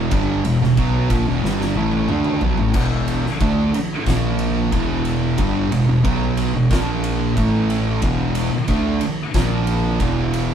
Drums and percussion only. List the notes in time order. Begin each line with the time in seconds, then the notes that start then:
0.11 kick, ride
0.45 ride
0.64 snare
0.77 kick, ride
1.10 kick, ride
1.45 snare
1.61 snare
1.75 high tom
1.92 high tom
2.09 mid tom
2.25 mid tom
2.41 floor tom
2.58 floor tom
2.74 kick, crash
3.08 ride
3.26 snare
3.40 kick, ride
3.74 ride
4.06 kick, snare, ride
4.39 ride
4.72 kick, ride
5.05 ride
5.38 kick, ride
5.72 ride
6.05 kick, ride
6.37 ride
6.71 kick, snare, ride
7.04 ride
7.37 kick, ride
7.70 ride
8.02 kick, ride
8.35 ride
8.68 kick, ride
9.01 ride
9.34 kick, snare, ride
9.67 ride
10.00 kick, ride
10.34 ride